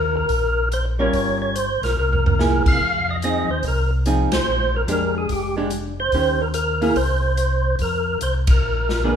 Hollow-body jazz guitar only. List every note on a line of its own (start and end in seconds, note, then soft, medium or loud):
0.99 1.52 G3 medium
0.99 1.53 C#4 medium
0.99 1.53 F4 medium
0.99 1.53 A#4 medium
2.39 2.81 A#3 medium
2.39 2.81 E4 medium
2.39 2.81 G#4 medium
3.24 3.47 F3 medium
3.24 3.47 C4 medium
3.24 3.48 D#4 medium
3.24 3.48 G#4 medium
4.06 4.30 F3 medium
4.06 4.30 C4 medium
4.06 4.30 D#4 medium
4.06 4.30 G#4 medium
4.88 5.51 G#3 medium
4.88 5.51 D4 medium
4.88 5.52 G4 medium
5.57 5.70 G#3 medium
5.57 5.70 D4 medium
5.57 5.70 G4 medium
6.14 6.38 D#3 medium
6.14 6.38 C#4 medium
6.14 6.38 G4 medium
6.14 6.38 C5 medium
6.81 6.95 A#3 medium
6.81 6.95 E4 medium
6.81 6.95 G#4 medium
9.04 9.16 A#3 soft
9.04 9.16 D4 medium
9.04 9.16 G#4 medium
9.04 9.16 B4 medium